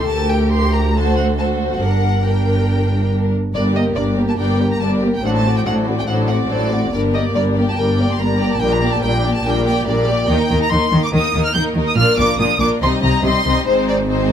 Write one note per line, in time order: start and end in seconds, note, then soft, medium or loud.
0.00 0.10 C2 soft
0.00 0.10 D#4 soft
0.00 0.50 A4 medium
0.00 0.10 C6 medium
0.09 1.77 D2 soft
0.09 1.78 D2 medium
0.09 0.92 G4 soft
0.09 0.92 A#4 soft
0.09 0.30 A5 medium
0.30 0.52 G5 medium
0.52 0.94 G4 soft
0.52 0.73 C6 medium
0.75 0.95 A#5 medium
0.95 1.38 F#4 soft
0.95 1.80 A4 soft
0.95 1.38 C5 soft
0.95 1.17 A5 medium
1.17 1.25 F#5 soft
1.38 1.81 F#4 soft
1.38 1.81 C5 soft
1.38 1.46 A5 soft
1.72 1.80 F#5 soft
1.81 3.31 G1 soft
1.81 3.30 G2 soft
1.81 2.24 D4 soft
1.81 3.33 A#4 soft
1.81 2.24 A#4 soft
1.81 2.24 F#5 medium
2.25 3.32 D4 soft
2.25 3.32 A#4 soft
2.25 3.11 G5 soft
3.54 3.92 G1 medium
3.54 3.92 G2 medium
3.54 3.75 G3 soft
3.54 3.74 D4 soft
3.54 3.74 A#4 soft
3.54 3.62 D5 medium
3.54 3.74 D5 soft
3.75 3.97 A#3 soft
3.75 3.97 G4 soft
3.75 3.95 A#4 soft
3.75 3.83 D#5 medium
3.96 4.34 G1 soft
3.96 4.34 G2 medium
3.96 4.18 G3 soft
3.96 4.18 D4 soft
3.96 4.18 A#4 soft
3.96 4.04 D5 medium
3.96 4.18 D5 soft
4.18 4.39 A#3 soft
4.18 4.40 G4 soft
4.18 4.37 A#4 soft
4.29 4.33 A5 medium
4.38 4.77 G1 soft
4.38 4.76 G2 soft
4.38 4.59 G3 soft
4.38 4.58 D4 soft
4.38 4.58 A#4 soft
4.38 4.58 D5 soft
4.38 4.70 G5 soft
4.60 4.81 A#3 soft
4.60 4.81 G4 soft
4.60 4.81 A#4 soft
4.71 4.81 A#5 medium
4.80 5.19 G1 soft
4.80 5.18 G2 soft
4.80 5.03 G3 soft
4.80 5.03 D4 soft
4.80 5.02 A#4 soft
4.80 5.03 D5 soft
4.80 4.88 A5 medium
5.03 5.24 A#3 soft
5.03 5.24 G4 soft
5.03 5.24 A#4 soft
5.14 5.24 G5 soft
5.22 5.61 A1 medium
5.22 5.60 A2 medium
5.22 5.43 F#3 soft
5.22 5.43 D4 soft
5.22 5.44 A4 soft
5.22 5.44 C5 soft
5.22 5.28 F#5 medium
5.35 5.55 A5 medium
5.44 5.66 A3 soft
5.44 5.66 C4 soft
5.44 5.67 F#4 soft
5.44 5.67 D5 soft
5.56 5.60 G5 medium
5.65 6.04 A1 soft
5.65 6.03 A2 medium
5.65 5.87 F#3 soft
5.65 5.87 D4 soft
5.65 5.88 A4 soft
5.65 5.88 C5 soft
5.65 5.74 F#5 medium
5.88 6.08 A3 soft
5.88 6.08 C4 soft
5.88 6.09 F#4 soft
5.88 6.10 D5 soft
6.00 6.03 G5 medium
6.08 6.45 A1 soft
6.08 6.45 A2 soft
6.08 6.28 F#3 soft
6.08 6.28 D4 soft
6.08 6.28 A4 soft
6.08 6.28 C5 soft
6.08 6.16 F#5 medium
6.28 6.51 A3 soft
6.28 6.50 C4 soft
6.28 6.52 F#4 soft
6.28 6.52 D5 soft
6.28 6.36 F#5 medium
6.49 6.87 A1 medium
6.49 6.88 A2 soft
6.49 6.72 F#3 soft
6.49 6.72 D4 soft
6.49 6.72 A4 soft
6.49 6.73 C5 soft
6.49 6.91 D5 medium
6.71 6.93 A3 soft
6.71 6.92 C4 soft
6.71 6.93 F#4 soft
6.71 6.93 D5 soft
6.92 7.30 G1 medium
6.92 7.30 G2 medium
6.92 7.13 G3 soft
6.92 7.13 D4 soft
6.92 7.13 A#4 soft
6.92 7.00 D5 medium
7.14 7.36 A#3 soft
7.14 7.35 G4 soft
7.14 7.35 D5 soft
7.14 7.22 D#5 medium
7.35 7.72 G1 soft
7.35 7.72 G2 medium
7.35 7.57 G3 soft
7.35 7.57 D4 soft
7.35 7.57 A#4 soft
7.35 7.43 D5 medium
7.57 7.78 A#3 soft
7.57 7.78 G4 soft
7.57 7.78 D5 soft
7.68 7.78 A5 medium
7.77 8.14 G1 medium
7.77 8.14 G2 medium
7.77 7.98 G3 soft
7.77 7.98 D4 soft
7.77 7.98 A#4 soft
7.77 8.09 G5 medium
7.99 8.20 A#3 soft
7.99 8.20 G4 soft
7.99 8.20 D5 soft
8.11 8.20 C6 medium
8.19 8.56 G1 soft
8.19 8.56 G2 medium
8.19 8.41 G3 soft
8.19 8.41 D4 soft
8.19 8.41 A#4 soft
8.19 8.51 A#5 medium
8.39 8.62 A#3 soft
8.39 8.61 G4 soft
8.39 8.61 D5 soft
8.52 8.62 A5 medium
8.60 8.97 A#1 medium
8.60 8.98 A#2 medium
8.60 8.81 G3 soft
8.60 8.81 D4 soft
8.60 8.81 A#4 soft
8.60 8.71 G5 medium
8.72 8.93 A#5 medium
8.82 9.03 A#3 soft
8.82 9.03 G4 soft
8.82 9.03 D5 soft
8.93 9.03 A5 medium
9.02 9.40 A#1 medium
9.02 9.40 A#2 medium
9.02 9.25 G3 soft
9.02 9.25 D4 soft
9.02 9.24 A#4 soft
9.02 9.33 G5 medium
9.24 9.46 A#3 soft
9.24 9.45 G4 soft
9.24 9.45 D5 soft
9.35 9.45 A5 medium
9.44 9.82 A#1 medium
9.44 9.81 A#2 medium
9.44 9.65 G3 soft
9.44 9.65 D4 soft
9.44 9.65 A#4 soft
9.44 9.64 G5 medium
9.66 9.87 A#3 soft
9.66 9.88 G4 soft
9.66 9.88 D5 soft
9.66 9.86 G5 medium
9.86 10.24 A#1 medium
9.86 10.24 A#2 medium
9.86 10.08 G3 soft
9.86 10.09 D4 soft
9.86 10.09 A#4 soft
9.86 10.28 D5 medium
10.08 10.29 A#3 soft
10.08 10.29 G4 soft
10.08 10.29 D5 soft
10.28 10.36 D#2 medium
10.28 10.37 D#3 medium
10.28 10.50 A#3 medium
10.28 10.49 D#4 medium
10.28 10.50 D#4 medium
10.28 10.49 A#4 medium
10.28 10.61 G5 medium
10.49 10.59 D#2 medium
10.49 10.57 D#3 medium
10.49 10.70 A#3 soft
10.49 10.70 D#4 soft
10.49 10.69 D#4 soft
10.49 10.70 A#4 soft
10.62 10.71 A#5 medium
10.71 10.80 D#2 medium
10.71 10.79 D#3 medium
10.71 10.91 A#3 soft
10.71 10.91 D#4 medium
10.71 10.91 D#4 soft
10.71 10.92 A#4 soft
10.71 11.02 C6 medium
10.92 11.00 D#2 soft
10.92 11.00 D#3 medium
10.92 11.12 A#3 soft
10.92 11.12 D#4 soft
10.92 11.12 A#4 soft
11.04 11.07 D6 medium
11.11 11.21 D#2 medium
11.11 11.19 D#3 medium
11.11 11.33 A#3 medium
11.11 11.33 D#4 medium
11.11 11.34 A#4 medium
11.11 11.44 D#6 medium
11.33 11.43 D#2 medium
11.33 11.41 D#3 medium
11.33 11.53 A#3 soft
11.33 11.54 D#4 soft
11.33 11.55 D#4 soft
11.33 11.55 A#4 soft
11.45 11.55 F6 medium
11.54 11.64 D#2 medium
11.54 11.62 D#3 medium
11.54 11.75 A#3 soft
11.54 11.76 D#4 soft
11.54 11.76 A#4 soft
11.54 11.62 G6 medium
11.74 11.85 D#2 medium
11.74 11.82 D#3 soft
11.74 11.97 A#3 soft
11.74 11.97 D#4 soft
11.74 11.97 A#4 soft
11.87 11.97 D#6 medium
11.96 12.06 A#1 medium
11.96 12.04 A#2 medium
11.96 12.18 A#3 medium
11.96 12.18 D4 medium
11.96 12.18 F4 medium
11.96 12.17 A#4 medium
11.96 12.17 F6 medium
12.17 12.26 A#1 medium
12.17 12.26 A#2 medium
12.17 12.39 A#3 soft
12.17 12.38 D4 medium
12.17 12.39 F4 soft
12.17 12.39 A#4 soft
12.17 12.38 D6 medium
12.39 12.47 A#1 medium
12.39 12.47 A#2 medium
12.39 12.60 A#3 medium
12.39 12.60 D4 medium
12.39 12.59 F4 soft
12.39 12.59 A#4 soft
12.39 12.59 D#6 medium
12.60 12.68 A#1 medium
12.60 12.68 A#2 medium
12.60 12.81 A#3 soft
12.60 12.81 D4 soft
12.60 12.81 F4 soft
12.60 12.81 A#4 soft
12.60 12.68 D6 medium
12.81 12.90 C2 medium
12.81 12.89 C3 medium
12.81 13.02 G3 medium
12.81 13.03 C4 medium
12.81 13.02 D#4 medium
12.81 13.02 D#5 medium
12.81 12.90 C6 medium
13.02 13.11 C2 medium
13.02 13.10 C3 medium
13.02 13.23 G3 soft
13.02 13.23 C4 soft
13.02 13.23 D#4 soft
13.02 13.23 D#5 soft
13.02 13.23 A#5 medium
13.22 13.32 C2 medium
13.22 13.30 C3 medium
13.22 13.44 G3 soft
13.22 13.44 C4 soft
13.22 13.45 D#4 soft
13.22 13.45 D#5 medium
13.22 13.65 C6 medium
13.45 13.53 C2 medium
13.45 13.53 C3 medium
13.45 13.66 G3 soft
13.45 13.66 C4 soft
13.45 13.66 D#4 soft
13.45 13.66 D#5 soft
13.66 14.32 G#1 medium
13.66 14.32 G#2 medium
13.66 14.07 G#3 medium
13.66 14.07 C4 medium
13.66 14.06 D#4 medium
13.66 13.87 C5 medium
13.66 14.06 C5 medium
13.87 13.95 D5 medium
14.09 14.32 G#3 medium
14.09 14.32 C4 medium
14.09 14.32 D#4 soft
14.09 14.32 C5 medium
14.09 14.32 C5 soft